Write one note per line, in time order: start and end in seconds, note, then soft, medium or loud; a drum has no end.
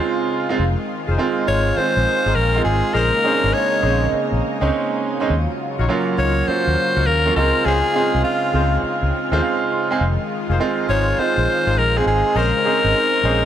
0.00 0.55 C#3 medium
0.00 0.49 G#3 medium
0.00 0.50 C4 medium
0.00 0.57 C4 medium
0.00 0.50 D#4 medium
0.00 0.50 F4 loud
0.00 2.91 F4 medium
0.49 0.59 G#3 loud
0.49 0.59 C4 medium
0.49 0.60 D#4 medium
0.49 0.60 F4 loud
0.59 0.75 F1 loud
0.59 2.92 D#3 medium
0.59 5.26 G#3 medium
1.08 1.16 F1 medium
1.08 1.16 D#4 medium
1.08 1.16 F4 medium
1.08 1.16 G#4 medium
1.08 1.17 C5 medium
1.18 1.73 G#3 medium
1.18 1.73 C4 medium
1.18 1.73 D#4 medium
1.18 1.73 F4 loud
1.47 1.71 G#1 medium
1.47 1.64 D#4 medium
1.47 1.64 F4 medium
1.47 1.64 G#4 medium
1.47 1.64 C5 medium
1.47 1.78 C#5 loud
1.77 2.45 G#3 medium
1.77 2.45 C4 medium
1.77 2.46 D#4 medium
1.77 2.46 F4 medium
1.77 2.37 C5 loud
1.77 muted fingered electric bass stroke soft
1.97 2.04 A#1 medium
2.25 2.34 G#1 medium
2.25 2.34 D#4 medium
2.25 2.34 F4 medium
2.25 2.34 G#4 medium
2.25 2.34 C5 medium
2.35 2.59 A#1 medium
2.35 2.64 A#4 loud
2.55 2.95 G#3 medium
2.55 2.95 C4 medium
2.55 2.95 D#4 medium
2.55 2.95 F4 medium
2.65 2.81 G#1 loud
2.65 2.96 G#4 loud
2.94 3.10 A#1 loud
2.94 5.27 C#3 medium
2.94 5.27 A#3 medium
2.94 3.11 C#4 medium
2.94 3.11 D#4 medium
2.94 5.28 D#4 medium
2.94 3.11 G#4 medium
2.94 3.55 A#4 loud
2.94 3.11 C5 loud
3.24 3.79 G#3 medium
3.24 3.79 C4 medium
3.24 3.40 C#4 medium
3.24 3.79 C#4 medium
3.24 3.33 D4 medium
3.24 3.40 D#4 medium
3.24 3.40 G#4 medium
3.24 3.40 C5 medium
3.32 3.82 D#4 medium
3.44 3.51 G#1 medium
3.54 4.12 C#5 loud
3.82 4.06 A#1 loud
3.82 4.51 G#3 medium
3.82 4.51 C4 medium
3.82 3.99 C#4 medium
3.82 4.51 C#4 medium
3.82 3.99 D#4 medium
3.82 4.52 D#4 medium
3.82 3.99 G#4 medium
3.82 3.99 C5 medium
4.13 muted fingered electric bass stroke soft
4.32 4.40 A#1 medium
4.61 4.69 C#2 medium
4.61 5.12 G#3 loud
4.61 5.12 C4 medium
4.61 4.69 C#4 medium
4.61 5.12 C#4 medium
4.61 4.69 D#4 medium
4.61 5.13 D#4 loud
4.61 4.69 G#4 medium
4.61 4.70 C5 medium
5.20 5.30 G#3 loud
5.20 5.30 C4 medium
5.20 5.30 C#4 medium
5.20 5.30 D#4 loud
5.30 5.45 D#2 loud
5.30 9.96 C#3 medium
5.30 7.34 F#3 medium
5.30 9.97 F4 medium
5.78 5.87 A#1 medium
5.78 5.87 D#4 medium
5.78 5.87 F4 medium
5.78 5.87 F#4 medium
5.78 5.87 C#5 medium
5.89 6.43 F#3 medium
5.89 6.44 A#3 medium
5.89 6.44 C#4 medium
5.89 6.44 F4 loud
6.18 6.41 C#2 medium
6.18 6.34 D#4 medium
6.18 6.34 F4 medium
6.18 6.34 F#4 medium
6.18 6.35 C#5 medium
6.18 6.49 C#5 loud
6.48 7.16 F#3 medium
6.48 7.16 A#3 medium
6.48 7.16 C#4 medium
6.48 7.16 F4 medium
6.48 7.08 C5 loud
6.67 6.75 D#2 medium
6.96 7.04 C#2 medium
6.96 7.05 D#4 medium
6.96 7.05 F4 medium
6.96 7.05 F#4 medium
6.96 7.05 C#5 medium
7.06 7.30 D#2 loud
7.06 7.35 A#4 loud
7.26 7.36 F#3 medium
7.26 7.36 A#3 medium
7.26 7.36 C#4 medium
7.26 7.36 F4 medium
7.36 7.51 C#2 loud
7.36 7.91 G#3 medium
7.36 9.98 C4 medium
7.36 7.91 C4 medium
7.36 7.91 D#4 medium
7.36 7.91 F4 medium
7.36 7.67 A#4 loud
7.65 7.81 C#2 loud
7.65 7.81 C#4 medium
7.65 7.81 F4 medium
7.65 7.82 G#4 medium
7.65 8.23 G#4 loud
7.65 7.82 C5 loud
7.94 8.49 G#3 medium
7.94 8.49 C4 medium
7.94 8.11 C#4 medium
7.94 8.50 D#4 medium
7.94 8.11 F4 medium
7.94 8.50 F4 medium
7.94 8.11 G#4 medium
7.94 8.11 C5 medium
8.15 8.22 C2 loud
8.24 8.79 F4 medium
8.53 8.77 C#2 loud
8.53 9.22 G#3 medium
8.53 9.22 C4 medium
8.53 8.70 C#4 medium
8.53 9.22 D#4 medium
8.53 8.70 F4 medium
8.53 9.22 F4 medium
8.53 8.70 G#4 medium
8.53 8.70 C5 medium
8.83 muted fingered electric bass stroke soft
9.03 9.10 C#2 medium
9.31 9.40 D#2 medium
9.31 9.82 G#3 medium
9.31 9.83 C4 medium
9.31 9.40 C#4 medium
9.31 9.83 D#4 medium
9.31 9.40 F4 medium
9.31 9.83 F4 loud
9.31 9.40 G#4 medium
9.31 9.40 C5 medium
9.42 9.69 F5 medium
9.72 9.99 C6 medium
9.91 10.00 G#3 loud
9.91 10.01 C4 medium
9.91 10.01 D#4 medium
9.91 10.01 G#4 loud
10.01 10.16 F1 loud
10.01 12.34 D#3 medium
10.01 13.45 G#3 medium
10.01 12.34 F4 medium
10.49 10.57 F1 loud
10.49 10.58 D#4 medium
10.49 10.58 F4 medium
10.49 10.58 G#4 medium
10.49 10.58 C5 medium
10.60 11.14 G#3 medium
10.60 11.14 C4 medium
10.60 11.14 D#4 medium
10.60 11.15 F4 loud
10.88 11.12 G#1 medium
10.88 11.05 D#4 medium
10.88 11.05 F4 medium
10.88 11.05 G#4 medium
10.88 11.05 C5 medium
10.88 11.20 C#5 loud
11.18 11.86 G#3 medium
11.18 11.87 C4 medium
11.18 11.87 D#4 medium
11.18 11.87 F4 medium
11.18 11.80 C5 loud
11.18 muted fingered electric bass stroke soft
11.38 11.45 A#1 medium
11.67 11.75 G#1 medium
11.67 11.75 D#4 medium
11.67 11.75 F4 medium
11.67 11.75 G#4 medium
11.67 11.75 C5 medium
11.77 12.00 A#1 loud
11.77 11.99 A#4 loud
11.96 12.36 G#3 medium
11.96 12.36 C4 medium
11.96 12.36 D#4 medium
11.96 12.07 G#4 medium
11.96 12.36 G#4 medium
12.06 12.21 G#1 medium
12.06 12.39 G#4 medium
12.35 12.51 A#1 loud
12.35 13.45 C#3 medium
12.35 12.52 C#4 medium
12.35 12.52 D#4 medium
12.35 13.45 D#4 medium
12.35 12.52 G#4 medium
12.35 13.45 A#4 loud
12.35 13.45 C5 medium
12.35 12.52 C5 loud
12.65 13.20 G#3 medium
12.65 13.20 C4 medium
12.65 12.81 C#4 medium
12.65 13.20 C#4 medium
12.65 12.81 D#4 medium
12.65 13.20 D#4 medium
12.65 12.82 G#4 medium
12.65 12.82 C5 medium
12.84 12.92 G#1 medium
13.24 13.45 A#1 loud
13.24 13.45 G#3 medium
13.24 13.45 C4 medium
13.24 13.40 C#4 medium
13.24 13.45 C#4 medium
13.24 13.40 D#4 medium
13.24 13.45 D#4 loud
13.24 13.40 G#4 medium
13.24 13.41 C5 medium